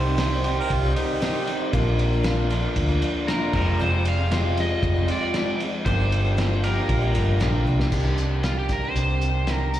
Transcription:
Already playing: picked electric bass C2, clean electric guitar C3 D#3 G3 C4 G4, tonewheel organ C4 D#4 G4 C5, harmonica C5
0.05 steel-string acoustic guitar C4 D#4 G4
0.17 steel-string acoustic guitar C3 D#3 C4 D#4 G4, snare, ride
0.44 clean electric guitar C3 G3, steel-string acoustic guitar D#3 C4 D#4 G4, ride
0.59 harmonica A#4
0.70 picked electric bass C2, harmonica F4, kick, ride
0.83 steel-string acoustic guitar C4 D#4 G4
0.96 steel-string acoustic guitar D#3 C4 D#4 G4, harmonica D#4, ride
1.21 steel-string acoustic guitar C3 D#3 C4 D#4 G4, clean electric guitar G3, snare, ride
1.47 steel-string acoustic guitar D#3 C4 D#4 G4, ride
1.72 picked electric bass A#1, steel-string acoustic guitar A#2 F3 A#3 D4 F4, clean electric guitar D3, tonewheel organ A#3 D4 F4 A#4, kick, ride
1.85 steel-string acoustic guitar A#3 D4 F4
1.99 ride
2.13 steel-string acoustic guitar A#3 D4 F4
2.23 steel-string acoustic guitar A#2 F3 A#3 D4 F4, snare, ride
2.37 steel-string acoustic guitar A#3 D4 F4
2.50 clean electric guitar A#2 D3, steel-string acoustic guitar F3 A#3 D4 F4, ride
2.76 picked electric bass D2, kick, ride
2.89 steel-string acoustic guitar A#3 D4 F4
3.02 steel-string acoustic guitar F3 A#3 D4 F4, ride
3.28 steel-string acoustic guitar A#2 F3 A#3 D4 F4, clean electric guitar D3, electric slide guitar A#4, snare, ride
3.52 picked electric bass F1, clean electric guitar F2 C3, steel-string acoustic guitar F3, tonewheel organ G#3 C4 F4 G#4, kick, crash
3.56 steel-string acoustic guitar G#3 C4 F4, electric slide guitar A#4
3.79 picked electric bass F1, steel-string acoustic guitar F2 C3 F3 G#3 C4 F4, electric slide guitar C5
3.92 steel-string acoustic guitar F3 G#3 C4 F4
4.05 electric slide guitar F5, ride
4.18 steel-string acoustic guitar F3 G#3 C4 F4
4.31 steel-string acoustic guitar F2 C3 F3 G#3 C4 F4, snare, ride
4.57 steel-string acoustic guitar F3 G#3 C4 F4, electric slide guitar D#5, ride
4.83 picked electric bass F1, kick, ride
4.95 steel-string acoustic guitar F3 G#3 C4 F4
5.08 clean electric guitar F2 C3, steel-string acoustic guitar F3 G#3 C4 F4, electric slide guitar D5, ride
5.34 steel-string acoustic guitar F2 C3 F3 G#3 C4 F4, snare, ride
5.60 steel-string acoustic guitar F3 G#3 C4 F4, ride
5.84 picked electric bass G1, steel-string acoustic guitar G2 D3 F3 A#3 D4 G4, tonewheel organ A#3 D4 F4 G4, electric slide guitar C5, kick, ride
5.99 steel-string acoustic guitar F3 A#3 D4 G4
6.12 ride
6.25 steel-string acoustic guitar F3 A#3 D4 G4
6.37 steel-string acoustic guitar G2 D3 F3 A#3 D4 G4, snare, ride
6.64 clean electric guitar G2 D3, steel-string acoustic guitar F3 A#3 D4 G4, electric slide guitar A#4, ride
6.89 picked electric bass A#1, kick, ride
7.02 steel-string acoustic guitar F3 A#3 D4 G4
7.13 picked electric bass G1, steel-string acoustic guitar F3 A#3 D4 G4, ride
7.39 picked electric bass A#1, steel-string acoustic guitar G2 D3 F3 A#3 D4 G4, snare, ride
7.66 picked electric bass C2, steel-string acoustic guitar F3 A#3 D4 G4, high tom
7.80 snare
7.92 picked electric bass C2, steel-string acoustic guitar C3 D#3 C4 D4 G4, clean electric guitar G3, kick, crash
8.16 steel-string acoustic guitar D#3 C4 D4 G4, closed hi-hat
8.44 electric slide guitar F4, snare, closed hi-hat
8.59 electric slide guitar G4
8.69 steel-string acoustic guitar D#3 C4 D4 G4, kick, closed hi-hat
8.73 electric slide guitar A#4
8.82 steel-string acoustic guitar C4 D4 G4, electric slide guitar C5
8.94 picked electric bass C2, clean electric guitar C3 D#3 G3 D4 G4, closed hi-hat
9.09 steel-string acoustic guitar C4 D4 G4
9.21 steel-string acoustic guitar D#3 C4 D4, closed hi-hat
9.26 steel-string acoustic guitar G4
9.47 steel-string acoustic guitar C3 D#3 C4 D4 G4, snare, closed hi-hat
9.53 electric slide guitar A#4
9.73 steel-string acoustic guitar D#3 C4 D4 G4, closed hi-hat

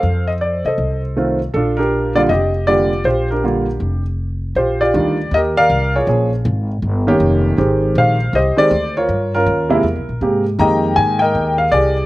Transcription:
Already playing: grand piano A4 C5 F5
0.03 upright bass F2
0.27 grand piano D#5
0.41 grand piano D5
0.65 upright bass C3, grand piano A4 C5 D#5
0.78 upright bass C2
1.16 grand piano D#3 A3 C4 F4
1.54 upright bass A#1, grand piano D4 F4 A4
1.77 grand piano D4 G4 A#4
2.15 grand piano D3 G3 A#3 F4 D5
2.29 upright bass F1, grand piano G4 D#5
2.67 grand piano D3 G3 A#3 F4 G4 D5
3.04 upright bass A#1, grand piano F4 G4 C5
3.30 grand piano D4 G4 A#4
3.43 grand piano D3 G3 A#3 F4
3.80 upright bass F1
4.55 upright bass A#1, grand piano F4 G4 C5
4.81 grand piano F4 G4 D5
4.94 upright bass D2, grand piano D#3 G3 D4 F4
5.31 upright bass D#2, grand piano G4 A#4 D#5
5.57 grand piano A#4 D5 F5
5.70 upright bass C2
5.96 grand piano F4 G#4 C#5
6.07 upright bass A#1, grand piano F3 A#3 C#4 G#4
6.45 upright bass G#1
6.82 upright bass G1
7.07 grand piano D#3 A#3 C#4 G4
7.20 upright bass F1
7.57 upright bass G#1, grand piano D#3 G#3 C4 G4
7.95 upright bass A#1, grand piano C5 F5
8.33 upright bass C2, grand piano G4 C5 D#5
8.57 grand piano D#3 G#3 C4 G4 D5, muted upright bass stroke
8.71 upright bass D2
8.97 grand piano F4 A#4 C#5
9.09 upright bass G2
9.34 grand piano C#4 F4 A#4
9.46 upright bass D#2
9.69 grand piano C3 G#3 A#3 E4
9.83 upright bass E2
9.96 upright bass C2
10.09 upright bass A#1
10.21 upright bass G#2, grand piano C3 G#3 A#3 G4
10.59 upright bass F2, grand piano D#3 G#3 A#3 G4 D#5 G5 A#5
10.96 upright bass G#2, grand piano G#5
11.19 grand piano A#4 D#5 G5
11.35 upright bass D#2
11.58 grand piano F5
11.72 upright bass C2, grand piano G4 G#4 D5

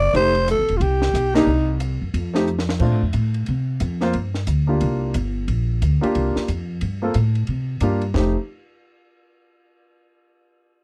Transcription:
Already playing: upright bass F#1, alto saxophone D5
0.13 upright bass F1, grand piano A3 C4 D#4 G4, alto saxophone C5, ride
0.35 ride
0.48 alto saxophone A4, hi-hat pedal, ride
0.59 upright bass G1
0.68 upright bass E1, ride
0.77 upright bass C2, alto saxophone F4, ride
0.81 alto saxophone G4
1.02 snare
1.14 upright bass B1, cross-stick, hi-hat pedal, ride
1.34 grand piano A#3 D4 D#4 G4, alto saxophone D#4, snare, ride
1.47 upright bass C2
1.80 hi-hat pedal, ride
2.01 upright bass F#2
2.14 upright bass F2, ride
2.33 grand piano A3 C4 D#4 G4, snare
2.47 hi-hat pedal
2.59 snare
2.69 snare
2.79 upright bass A#2, grand piano A3 C4 D4 F4, kick, crash
2.92 upright bass A2
3.02 upright bass F2
3.13 upright bass A2, hi-hat pedal, ride
3.34 ride
3.46 upright bass C3, ride
3.80 upright bass F2, hi-hat pedal, ride
4.01 grand piano A#3 C4 F4 C5, snare
4.13 upright bass G2, ride
4.34 snare
4.47 upright bass D2, hi-hat pedal, ride
4.67 grand piano A#3 D4 F4 G4
4.81 upright bass C2, ride
5.14 upright bass G1, hi-hat pedal, ride
5.48 upright bass A#1, ride
5.82 upright bass D2, hi-hat pedal, ride
6.01 grand piano A#3 D4 F4 G4, muted upright bass stroke, ride
6.15 upright bass C2, ride
6.36 muted upright bass stroke, snare
6.48 upright bass F2, hi-hat pedal, ride
6.81 upright bass G2, ride
7.02 grand piano A#3 C4 F4 A4
7.14 upright bass A2, hi-hat pedal, ride
7.35 ride
7.47 upright bass C3, ride
7.80 upright bass G2, grand piano A#3 D4 F4 G4, hi-hat pedal, ride
8.01 ride
8.14 upright bass F1, grand piano A3 C4 D#4 G4, kick, snare

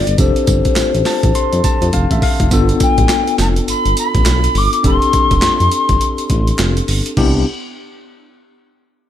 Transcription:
Already playing: tine electric piano B3 D4 F4 A4, ocarina D5
0.07 analog synth bass G1, closed hi-hat
0.18 analog synth bass F1, tine electric piano C4 D4 G4 A4, ocarina C5, kick, closed hi-hat, tambourine
0.36 closed hi-hat
0.47 analog synth bass G1, kick, closed hi-hat, tambourine
0.65 kick, closed hi-hat
0.76 analog synth bass A1, snare, clap, closed hi-hat, tambourine
0.94 analog synth bass A1, closed hi-hat
1.05 tine electric piano A5, snare, open hi-hat, tambourine
1.23 analog synth bass A1, kick, closed hi-hat
1.35 tine electric piano C6, closed hi-hat
1.53 analog synth bass F2, closed hi-hat
1.64 tine electric piano A5, kick, closed hi-hat, tambourine
1.81 analog synth bass F2, closed hi-hat
1.93 analog synth bass F1, tine electric piano F5, kick, closed hi-hat
2.11 analog synth bass A1, tine electric piano E5, kick, closed hi-hat
2.22 tine electric piano F5, kick, open hi-hat
2.40 analog synth bass F1, kick, closed hi-hat
2.51 analog synth bass G1, tine electric piano B3 D4 F4 A4, kick, closed hi-hat, tambourine
2.69 closed hi-hat
2.80 ocarina G5, kick, closed hi-hat, tambourine
2.98 analog synth bass A1, kick, closed hi-hat
3.09 snare, clap, closed hi-hat, tambourine
3.27 closed hi-hat
3.38 analog synth bass F1, ocarina A5, snare, closed hi-hat, tambourine
3.56 closed hi-hat
3.68 analog synth bass G1, ocarina B5, closed hi-hat, tambourine
3.85 analog synth bass G1, closed hi-hat
3.97 ocarina B5, closed hi-hat, tambourine
4.15 analog synth bass A1, kick, closed hi-hat
4.25 analog synth bass B1, snare, clap, closed hi-hat, tambourine
4.44 closed hi-hat
4.55 analog synth bass G1, ocarina D6, open hi-hat
4.73 closed hi-hat
4.83 analog synth bass F1, tine electric piano C4 D4 G4 A4, ocarina C6, kick, closed hi-hat
5.02 closed hi-hat
5.13 kick, closed hi-hat
5.31 analog synth bass F1, kick, closed hi-hat
5.42 analog synth bass F2, snare, clap, closed hi-hat
5.60 analog synth bass F2, closed hi-hat
5.72 closed hi-hat
5.89 analog synth bass G1, kick, closed hi-hat
6.01 closed hi-hat
6.18 closed hi-hat
6.30 analog synth bass A1, kick, closed hi-hat
6.47 closed hi-hat
6.58 analog synth bass F1, snare, clap, closed hi-hat
6.77 closed hi-hat
6.88 analog synth bass G1, open hi-hat
7.06 closed hi-hat
7.17 analog synth bass C2, tine electric piano B3 D4 E4 G4, kick, crash

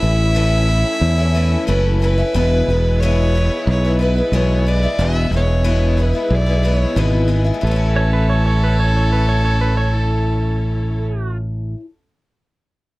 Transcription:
Already playing: string section C#4 E4 A4, fiddle E5
0.02 fingered electric bass A1, twelve-string acoustic guitar E3 A3 C#4 E4
0.35 twelve-string acoustic guitar A2 E3 A3 C#4 E4
0.68 twelve-string acoustic guitar E3 A3 C#4 E4
1.01 fingered electric bass E2
1.18 twelve-string acoustic guitar A3 C#4 E4
1.34 twelve-string acoustic guitar E3 A3 C#4 E4
1.67 fingered electric bass F#1, twelve-string acoustic guitar A2 E3 A3 C#4 E4, fiddle B4
2.02 twelve-string acoustic guitar E3 A3 C#4 E4, fiddle B4
2.18 twelve-string acoustic guitar A3 C#4 E4
2.33 fingered electric bass E1, twelve-string acoustic guitar E2 B2 E3 G#3 B3 E4, string section B3 E4 G#4 B4
2.68 fingered electric bass E1, twelve-string acoustic guitar E3 G#3 B3 E4
3.01 twelve-string acoustic guitar E2 B2 E3 G#3 B3 E4, fiddle C#5
3.35 twelve-string acoustic guitar E3 G#3 B3 E4
3.67 fingered electric bass B1, fiddle C#5
3.85 twelve-string acoustic guitar E3 G#3 B3 E4
3.99 twelve-string acoustic guitar E3 G#3 B3 E4, fiddle B4
4.16 twelve-string acoustic guitar E3 G#3 B3 E4
4.32 fingered electric bass B1, twelve-string acoustic guitar E2 B2 E3 G#3 B3 E4, fiddle C#5
4.66 twelve-string acoustic guitar E3 G#3 B3 E4, fiddle D5
4.83 twelve-string acoustic guitar E3 G#3 B3 E4
4.98 fingered electric bass E1, twelve-string acoustic guitar E2 B2 E3 G#3 B3 E4, string section B3 E4 G#4
5.03 fiddle E5
5.31 fingered electric bass E1, twelve-string acoustic guitar E3 G#3 B3 E4
5.36 fiddle C#5
5.64 twelve-string acoustic guitar E2 B2 E3 G#3 B3 E4
5.97 twelve-string acoustic guitar E3 G#3 B3 E4
6.02 fiddle B4
6.13 twelve-string acoustic guitar E3 G#3 B3 E4
6.30 fingered electric bass B1
6.34 fiddle D5
6.46 twelve-string acoustic guitar E3 G#3 B3 E4
6.63 twelve-string acoustic guitar E3 G#3 B3 E4, fiddle C#5
6.96 fingered electric bass G#1, twelve-string acoustic guitar E2 B2 E3 G#3 B3 E4, fiddle B4
7.28 twelve-string acoustic guitar E3 G#3 B3 E4
7.44 twelve-string acoustic guitar E3 G#3 B3 E4
7.54 twelve-string acoustic guitar A2
7.61 fingered electric bass A1, twelve-string acoustic guitar E3, string section C#4 E4 A4 C#5, fiddle A4
7.67 twelve-string acoustic guitar A3
7.71 twelve-string acoustic guitar C#4
7.76 twelve-string acoustic guitar E4
7.96 pedal steel guitar C#5
8.13 pedal steel guitar B4
8.30 pedal steel guitar C#5
8.46 pedal steel guitar C#5
8.63 pedal steel guitar B4
8.80 pedal steel guitar C#5
8.97 pedal steel guitar C#5
9.12 pedal steel guitar B4
9.29 pedal steel guitar C#5
9.45 pedal steel guitar C#5
9.61 pedal steel guitar B4
9.77 pedal steel guitar C#5
9.94 pedal steel guitar A4

